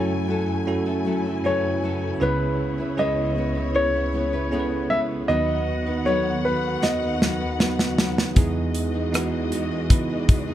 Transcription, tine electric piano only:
0.00 2.17 F#2 soft
0.00 0.67 C#4 medium
0.00 0.67 E4 medium
0.00 0.68 F#4 medium
0.00 0.68 A4 medium
0.67 1.40 C#4 medium
0.67 1.40 E4 medium
0.67 1.40 F#4 medium
0.67 1.41 A4 medium
1.44 2.17 C#4 medium
1.44 2.17 E4 medium
1.44 2.17 F#4 medium
1.44 2.18 B4 medium
2.20 5.25 C#2 medium
2.20 5.25 C#3 medium
2.20 2.94 C#4 medium
2.20 2.94 E4 medium
2.20 2.94 G#4 medium
2.20 2.94 B4 medium
2.97 3.71 C#4 medium
2.97 3.71 E4 medium
2.97 3.71 G#4 medium
2.97 3.71 B4 medium
3.74 4.48 C#4 medium
3.74 4.48 E4 medium
3.74 4.48 G#4 medium
3.74 4.48 B4 medium
4.51 5.25 C#4 medium
4.51 5.25 E4 medium
4.51 5.25 G#4 medium
4.51 4.59 A4 medium
4.60 5.28 B4 medium
5.29 8.33 D#2 medium
5.29 8.32 D#3 soft
5.29 6.02 B3 medium
5.29 6.02 D#4 medium
5.29 6.02 F#4 medium
5.29 6.02 B4 medium
6.05 6.78 B3 medium
6.05 6.78 D#4 medium
6.05 6.78 F#4 medium
6.05 6.79 A4 medium
6.82 7.55 B3 medium
6.82 7.55 D#4 medium
6.82 7.56 F#4 medium
6.82 7.56 B4 medium
7.59 8.32 B3 medium
7.59 8.33 D#4 medium
7.59 8.33 F#4 medium
7.59 8.33 B4 medium
8.36 10.54 E2 medium
8.36 10.54 E3 medium
8.36 9.09 B3 medium
8.36 9.10 D#4 medium
8.36 9.10 E4 medium
8.36 9.10 G#4 medium
9.12 9.86 B3 medium
9.12 9.86 D#4 medium
9.12 9.86 E4 medium
9.12 9.86 F#4 medium
9.90 10.54 B3 medium
9.90 10.54 D#4 medium
9.90 10.54 E4 medium
9.90 10.54 B4 medium

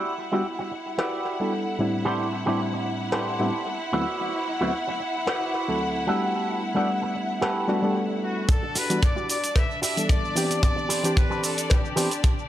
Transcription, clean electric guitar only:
0.00 0.12 E4 loud
0.00 0.12 F#4 medium
0.00 0.12 G4 medium
0.00 0.13 D5 loud
0.32 0.45 E4 medium
0.32 0.45 F#4 medium
0.32 0.45 G4 medium
0.32 0.46 D5 medium
0.59 muted clean electric guitar stroke medium
0.71 muted clean electric guitar stroke soft
0.98 1.52 E4 medium
0.98 1.52 F#4 medium
0.98 1.53 G4 medium
0.98 1.53 D5 medium
2.05 2.26 G4 loud
2.05 2.26 A4 loud
2.05 2.26 B4 medium
2.05 2.27 C5 medium
2.05 2.27 D5 loud
2.46 2.59 G4 medium
2.46 2.59 A4 medium
2.46 2.59 B4 medium
2.46 2.60 C5 medium
2.46 2.60 D5 medium
2.73 muted clean electric guitar stroke medium
2.85 muted clean electric guitar stroke soft
3.12 3.66 G4 medium
3.12 3.66 A4 medium
3.12 3.67 B4 medium
3.12 3.67 C5 medium
3.12 3.67 D5 medium
3.93 4.47 E4 medium
3.93 4.47 F#4 medium
3.93 4.47 B4 medium
3.93 4.47 C5 medium
3.93 4.47 D5 medium
4.61 4.74 E4 medium
4.61 4.74 F#4 medium
4.61 4.74 B4 medium
4.61 4.74 C5 medium
4.61 4.74 D5 medium
4.87 muted clean electric guitar stroke medium
5.00 muted clean electric guitar stroke soft
5.27 5.81 E4 medium
5.27 5.81 F#4 medium
5.27 5.81 B4 medium
5.27 5.81 C5 medium
5.27 5.81 D5 medium
6.07 6.61 F#4 medium
6.07 6.61 G4 medium
6.07 6.62 A4 medium
6.07 6.62 B4 medium
6.75 6.88 F#4 medium
6.75 6.88 G4 medium
6.75 6.88 A4 medium
6.75 6.89 D5 medium
7.02 muted clean electric guitar stroke medium
7.15 muted clean electric guitar stroke soft
7.41 7.95 F#4 medium
7.41 7.95 G4 medium
7.41 7.96 A4 medium
7.41 7.96 B4 medium
8.63 muted clean electric guitar stroke medium
8.75 8.96 E4 loud
8.75 8.96 F#4 loud
8.75 8.96 G4 medium
8.75 8.97 A4 loud
9.16 9.36 E4 medium
9.16 9.36 F#4 medium
9.16 9.37 G4 medium
9.16 9.37 D5 medium
9.55 muted clean electric guitar stroke soft
9.82 9.97 E4 loud
9.82 9.97 F#4 loud
9.82 9.97 G4 medium
9.82 9.97 D5 loud
10.09 muted clean electric guitar stroke soft
10.50 muted clean electric guitar stroke soft
10.76 muted clean electric guitar stroke medium
10.89 11.10 G4 loud
10.89 11.10 A4 loud
10.89 11.10 B4 loud
10.89 11.10 C5 loud
10.89 11.11 D5 loud
11.30 11.50 G4 medium
11.30 11.50 A4 medium
11.30 11.51 B4 medium
11.30 11.51 C5 medium
11.30 11.51 D5 medium
11.69 muted clean electric guitar stroke soft
11.96 12.11 G4 loud
11.96 12.11 A4 loud
11.96 12.11 B4 loud
11.96 12.11 C5 medium
11.96 12.12 D5 loud
12.23 muted clean electric guitar stroke soft

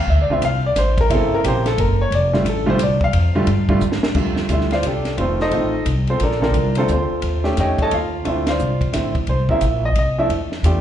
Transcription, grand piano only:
0.10 0.20 E5 medium
0.22 0.32 D5 medium
0.30 0.41 D3 medium
0.30 0.41 A3 medium
0.30 0.41 C4 medium
0.30 0.41 F4 medium
0.30 0.43 E5 medium
0.45 0.65 F5 loud
0.66 0.77 D5 loud
0.78 0.98 C5 medium
1.01 1.11 A#4 loud
1.09 1.42 C#3 medium
1.09 1.43 A#3 medium
1.09 1.43 C4 medium
1.09 1.43 E4 medium
1.15 1.33 A4 medium
1.35 1.45 A#4 loud
1.45 1.64 C#3 medium
1.45 1.64 A#3 medium
1.45 1.64 C4 medium
1.45 1.64 G4 medium
1.45 1.67 C5 loud
1.67 1.78 A4 medium
1.80 2.00 A#4 medium
2.01 2.13 C#5 medium
2.14 2.34 D5 loud
2.33 2.45 D3 medium
2.33 2.45 G3 medium
2.33 2.45 A3 medium
2.33 2.45 F4 medium
2.49 2.69 A4 medium
2.66 2.78 D3 medium
2.66 2.78 G3 medium
2.66 2.78 A3 medium
2.66 2.78 F4 loud
2.66 2.81 C5 loud
2.83 3.02 D5 medium
3.04 3.79 F5 loud
3.35 3.46 D3 loud
3.35 3.47 G3 medium
3.35 3.47 A3 medium
3.35 3.47 F4 medium
3.69 3.80 D3 medium
3.69 3.80 G3 medium
3.69 3.81 A3 medium
3.69 3.81 F4 medium
4.15 4.48 D3 medium
4.15 4.48 G3 medium
4.15 4.48 A3 medium
4.15 4.48 F4 medium
4.49 4.69 D3 medium
4.49 4.69 G3 medium
4.49 4.69 A3 medium
4.49 4.72 E4 medium
4.49 4.69 F4 medium
4.49 4.73 E5 medium
4.72 4.84 F4 medium
4.72 4.85 C5 medium
4.72 4.84 D5 medium
4.72 4.84 F5 medium
4.86 5.17 D4 medium
4.86 5.17 G4 medium
4.86 5.17 A4 medium
4.86 5.17 D5 medium
5.17 5.50 D#3 medium
5.17 5.51 A3 medium
5.17 5.19 C4 medium
5.17 5.19 F4 medium
5.17 5.19 B4 soft
5.21 5.41 C4 medium
5.21 5.41 F4 medium
5.21 5.40 A4 medium
5.21 5.40 C5 medium
5.42 5.84 D#4 medium
5.42 5.84 A4 medium
5.42 5.84 C5 medium
5.42 5.84 D#5 loud
5.52 5.72 D#3 medium
5.52 5.72 A3 medium
5.52 5.72 C4 medium
5.52 5.72 F4 medium
6.10 6.21 C4 medium
6.10 6.21 F4 medium
6.10 6.21 A4 medium
6.10 6.21 C5 medium
6.23 6.42 D4 medium
6.23 6.40 A4 medium
6.23 6.42 A#4 medium
6.23 6.43 D5 medium
6.41 6.53 D3 medium
6.41 6.53 A#3 medium
6.41 6.53 C4 medium
6.41 6.75 D4 medium
6.41 6.75 F4 medium
6.41 6.53 A4 medium
6.41 6.74 A#4 medium
6.77 6.88 D3 medium
6.77 6.89 A3 medium
6.77 6.88 A#3 medium
6.77 6.88 C4 medium
6.77 6.90 D4 medium
6.77 6.90 F4 medium
6.77 6.89 A4 medium
6.77 6.88 C5 medium
6.92 7.43 C4 medium
6.92 7.43 F4 soft
6.92 7.43 A4 medium
6.92 7.42 C5 medium
7.44 7.88 D#3 medium
7.44 7.88 A3 medium
7.44 7.89 C#4 medium
7.44 7.59 G4 medium
7.60 7.80 G4 medium
7.60 7.80 C#5 medium
7.60 7.80 D#5 medium
7.60 7.79 G5 medium
7.82 7.93 A4 medium
7.82 7.92 C#5 medium
7.82 7.93 D#5 medium
7.82 7.93 A5 loud
7.94 8.24 F4 medium
7.94 8.24 F5 medium
8.25 8.45 D3 medium
8.25 8.45 A3 medium
8.25 8.45 C4 medium
8.25 8.45 F4 medium
8.25 8.48 E5 medium
8.29 8.48 E4 medium
8.48 8.92 F4 medium
8.48 8.92 C5 medium
8.48 8.92 D5 medium
8.48 8.91 F5 medium
8.93 9.13 D3 medium
8.93 9.13 A3 soft
8.93 9.13 C4 medium
8.93 9.13 E4 medium
9.29 9.50 C5 medium
9.50 9.61 C#3 medium
9.50 9.61 A#3 medium
9.50 9.61 C4 medium
9.50 9.61 E4 medium
9.50 9.82 E5 loud
9.85 9.97 D#5 medium
9.99 10.19 D#5 medium
10.18 10.29 F3 medium
10.18 10.29 A3 medium
10.18 10.29 D4 medium
10.18 10.30 E4 medium
10.18 10.31 E5 medium
10.65 10.81 A3 medium
10.65 10.81 D4 medium
10.65 10.81 F4 medium
10.65 10.81 G4 medium

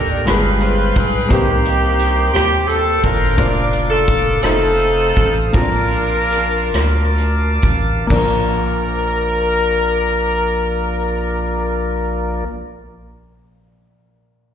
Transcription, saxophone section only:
0.00 0.24 D4 medium
0.00 0.27 A#4 medium
0.27 1.27 F4 medium
0.27 0.59 G#4 medium
0.27 1.27 B4 medium
0.61 0.96 C5 medium
0.97 1.31 G#4 medium
1.32 2.32 A#3 medium
1.32 2.32 D#4 medium
1.32 2.32 G4 medium
2.34 2.66 G4 medium
2.68 3.03 A4 medium
3.04 3.91 D4 medium
3.04 3.91 F4 medium
3.04 3.63 A#4 medium
3.90 4.41 D4 medium
3.90 4.41 F4 medium
3.90 4.40 A4 medium
4.43 5.38 C4 medium
4.43 5.38 D#4 medium
4.43 5.38 A4 medium
5.55 7.61 D4 medium
5.55 7.61 F4 medium
5.55 7.60 A#4 medium
8.12 12.44 A#4 medium

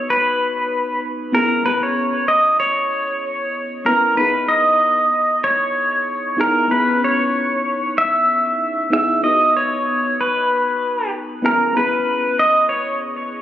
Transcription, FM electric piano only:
0.00 1.29 B3 medium
0.00 1.30 D#4 medium
0.00 1.31 F#4 medium
0.00 1.32 B4 medium
1.32 1.61 B3 medium
1.32 1.62 C#4 medium
1.32 1.62 E4 medium
1.32 1.63 G#4 medium
1.63 3.82 B3 medium
1.63 3.82 C#4 medium
1.63 3.83 E4 medium
1.67 3.84 G#4 medium
3.85 4.14 B3 medium
3.85 4.14 C#4 medium
3.85 4.15 E4 medium
3.85 4.15 B4 medium
4.15 6.34 B3 medium
4.15 6.35 D#4 medium
4.15 6.36 E4 medium
4.20 6.37 G#4 medium
6.37 6.66 B3 medium
6.37 6.67 D#4 medium
6.37 6.67 E4 medium
6.37 6.67 G#4 medium
6.68 8.87 B3 medium
6.68 8.88 C#4 medium
6.68 8.88 E4 medium
6.73 8.89 G#4 medium
8.90 9.19 B3 medium
8.90 9.20 D#4 medium
8.90 9.20 E4 medium
8.90 9.20 G#4 medium
9.21 11.40 B3 medium
9.21 11.40 D#4 medium
9.21 11.41 F#4 medium
9.26 11.42 B4 medium
11.42 11.71 B3 medium
11.42 11.72 C#4 medium
11.42 11.72 E4 medium
11.42 11.73 G#4 medium
11.73 13.42 B3 medium
11.73 13.42 C#4 medium
11.73 13.42 E4 medium
11.78 13.42 G#4 medium

